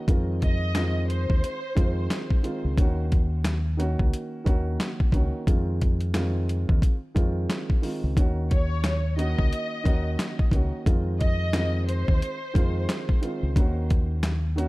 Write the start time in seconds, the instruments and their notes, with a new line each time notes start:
0.07 fingered electric bass F2, grand piano D#3 G#3 C4 F4, kick, closed hi-hat
0.42 violin section D#5, kick, closed hi-hat
0.75 grand piano D#3 G#3 C4 F4, snare, clap, closed hi-hat
1.08 violin section C5, closed hi-hat
1.30 fingered electric bass D#2, kick
1.44 closed hi-hat
1.75 fingered electric bass F2, grand piano D#3 G#3 C4 F4, kick, closed hi-hat
2.10 snare, clap, closed hi-hat
2.30 kick
2.43 grand piano D#3 G#3 C4 F4, closed hi-hat
2.64 fingered electric bass C#2
2.77 fingered electric bass D#2, grand piano D#3 A#3 C#4 F#4, kick, closed hi-hat
3.12 kick, closed hi-hat
3.45 snare, clap, closed hi-hat
3.77 grand piano D#3 A#3 C#4 F#4, closed hi-hat
3.99 fingered electric bass C#2, kick
4.13 closed hi-hat
4.44 fingered electric bass D#2, grand piano D#3 A#3 C#4 F#4, kick, closed hi-hat
4.80 snare, clap, closed hi-hat
5.00 kick
5.12 fingered electric bass C#2, grand piano D#3 A#3 C#4 F#4, kick, closed hi-hat
5.47 fingered electric bass F2, grand piano D#3 G#3 C4 F4, kick, closed hi-hat
5.82 kick, closed hi-hat
6.01 closed hi-hat
6.14 grand piano D#3 G#3 C4 F4, snare, clap, closed hi-hat
6.49 closed hi-hat
6.69 fingered electric bass D#2, kick
6.82 kick, closed hi-hat
7.15 fingered electric bass F2, grand piano D#3 G#3 C4 F4, kick, closed hi-hat
7.50 snare, clap, closed hi-hat
7.70 kick
7.82 grand piano D#3 G#3 C4 F4, open hi-hat
8.04 fingered electric bass C#2
8.16 fingered electric bass D#2, grand piano D#3 A#3 C#4 F#4, kick, closed hi-hat
8.51 violin section C#5, kick, closed hi-hat
8.84 snare, clap, closed hi-hat
9.16 grand piano D#3 A#3 C#4 F#4, violin section D#5, closed hi-hat
9.39 fingered electric bass C#2, kick
9.53 closed hi-hat
9.83 fingered electric bass D#2, grand piano D#3 A#3 C#4 F#4, kick, closed hi-hat
10.19 snare, clap, closed hi-hat
10.39 kick
10.51 fingered electric bass C#2, grand piano D#3 A#3 C#4 F#4, kick, closed hi-hat
10.86 fingered electric bass F2, grand piano D#3 G#3 C4 F4, kick, closed hi-hat
11.20 violin section D#5, kick, closed hi-hat
11.53 grand piano D#3 G#3 C4 F4, snare, clap, closed hi-hat
11.87 violin section C5, closed hi-hat
12.08 fingered electric bass D#2, kick
12.22 closed hi-hat
12.54 fingered electric bass F2, grand piano D#3 G#3 C4 F4, kick, closed hi-hat
12.89 snare, clap, closed hi-hat
13.09 kick
13.21 grand piano D#3 G#3 C4 F4, closed hi-hat
13.43 fingered electric bass C#2
13.56 fingered electric bass D#2, grand piano D#3 A#3 C#4 F#4, kick, closed hi-hat
13.90 kick, closed hi-hat
14.23 snare, clap, closed hi-hat
14.56 grand piano D#3 A#3 C#4 F#4, closed hi-hat